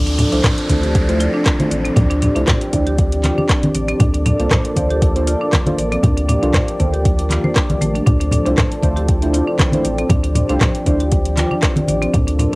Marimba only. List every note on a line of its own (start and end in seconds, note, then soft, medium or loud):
0.07 0.17 D4 medium
0.19 0.31 D4 medium
0.32 0.39 D4 medium
0.44 0.57 C5 medium
0.69 0.82 D5 medium
0.83 0.89 G4 medium
1.20 1.33 F4 medium
1.34 1.40 D4 medium
1.71 1.83 D5 medium
1.85 1.96 C4 medium
1.96 2.09 D4 medium
2.10 2.21 D4 medium
2.22 2.34 D4 medium
2.35 2.42 D4 medium
2.47 2.60 C5 medium
2.73 2.85 D5 medium
2.87 2.93 G4 medium
3.24 3.37 F4 medium
3.38 3.44 D4 medium
3.75 3.87 D5 medium
3.88 3.99 C4 medium
4.00 4.12 D4 medium
4.14 4.24 D4 medium
4.26 4.38 D4 medium
4.40 4.46 D4 medium
4.51 4.64 C5 medium
4.76 4.89 D5 medium
4.90 4.97 G4 medium
5.27 5.40 F4 medium
5.41 5.47 D4 medium
5.78 5.91 D5 medium
5.92 6.03 C4 medium
6.04 6.16 D4 medium
6.17 6.27 D4 medium
6.29 6.41 D4 medium
6.43 6.49 D4 medium
6.54 6.67 C5 medium
6.80 6.92 D5 medium
6.93 7.00 G4 medium
7.30 7.38 F4 medium
7.44 7.55 C5 medium
7.56 7.68 D4 medium
7.81 7.89 A3 medium
7.95 8.06 D4 medium
8.07 8.19 D4 medium
8.21 8.31 D4 medium
8.32 8.44 D4 medium
8.46 8.52 D4 medium
8.57 8.71 C5 medium
8.83 8.95 D5 medium
8.96 9.03 G4 medium
9.34 9.47 F4 medium
9.47 9.54 D4 medium
9.85 9.97 D5 medium
9.98 10.10 C4 medium
10.10 10.22 D4 medium
10.23 10.34 D4 medium
10.35 10.48 D4 medium
10.49 10.56 D4 medium
10.61 10.74 C5 medium
10.86 10.99 D5 medium
11.00 11.06 G4 medium
11.37 11.50 F4 medium
11.51 11.57 D4 medium
11.88 12.01 D5 medium
12.02 12.13 C4 medium
12.14 12.26 D4 medium
12.27 12.38 D4 medium
12.39 12.51 D4 medium